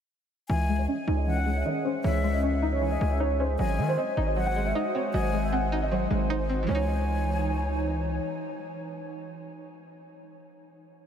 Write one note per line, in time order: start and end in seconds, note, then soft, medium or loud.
0.49 0.87 C#2 loud
0.49 1.26 E3 medium
0.49 3.56 C#4 medium
0.49 3.56 G#4 medium
0.49 3.56 C#5 medium
0.49 0.77 E5 medium
0.49 0.86 G#5 loud
0.69 1.45 G#3 medium
0.79 0.87 C#5 medium
0.88 1.84 C#4 medium
0.88 1.15 D#5 medium
1.07 1.63 C#2 loud
1.07 2.04 D#4 loud
1.17 1.35 D#5 medium
1.27 2.03 E3 medium
1.27 1.63 F#5 medium
1.36 1.54 F#5 medium
1.46 2.23 G#3 medium
1.55 1.65 E5 medium
1.66 2.62 D#3 medium
1.66 1.84 D#5 loud
1.85 2.42 C#4 medium
1.85 2.03 C5 medium
2.04 2.97 C#2 loud
2.04 2.80 E3 medium
2.04 2.31 C#5 medium
2.04 2.41 E5 loud
2.24 3.00 G#3 medium
2.33 2.42 D#5 medium
2.43 3.39 C#4 medium
2.43 2.70 E5 medium
2.62 3.19 D#4 loud
2.72 2.90 C#5 medium
2.82 3.59 E3 medium
2.82 3.18 G#5 medium
2.91 3.09 D#5 medium
3.01 3.57 C#2 loud
3.01 3.59 G#3 medium
3.11 3.20 E5 medium
3.20 3.59 D#4 loud
3.20 3.38 C#5 medium
3.40 3.59 C#4 medium
3.40 3.58 C5 medium
3.59 3.80 G#1 loud
3.59 4.35 F#3 medium
3.59 6.66 G#3 medium
3.59 6.66 F#4 medium
3.59 6.66 C5 medium
3.59 3.86 D#5 medium
3.59 3.96 G#5 loud
3.78 3.97 D#3 loud
3.78 4.55 G#3 medium
3.88 3.97 C5 medium
3.97 4.94 C4 medium
3.97 4.25 D#5 medium
4.17 4.73 G#1 loud
4.17 4.74 D#4 medium
4.27 4.45 D#5 medium
4.37 5.13 F#3 medium
4.37 4.73 F#5 medium
4.46 4.64 F#5 medium
4.56 5.32 G#3 medium
4.65 4.74 E5 medium
4.75 5.71 D#4 loud
4.75 4.93 D#5 medium
4.95 5.51 C4 medium
4.95 5.12 C#5 medium
5.14 6.07 G#1 loud
5.14 5.90 F#3 medium
5.14 5.41 D#5 medium
5.14 5.50 G#5 medium
5.33 6.09 G#3 medium
5.43 5.52 E5 medium
5.53 6.48 C4 medium
5.53 5.80 F#5 medium
5.72 6.29 D#4 medium
5.82 5.91 D#5 medium
5.91 6.69 F#3 medium
5.91 6.28 C5 medium
6.11 6.66 G#1 loud
6.11 6.66 G#3 medium
6.30 6.69 D#4 loud
6.30 6.67 C5 medium
6.49 6.69 C4 medium
6.63 10.04 E3 medium
6.63 10.08 G#3 medium
6.69 8.20 C#2 loud
6.69 10.10 E3 medium
6.69 10.12 C#4 medium
6.69 10.10 D#4 medium
6.69 7.81 C#5 medium
6.69 10.10 C#5 medium
6.69 7.81 G#5 medium
6.75 10.16 D#4 medium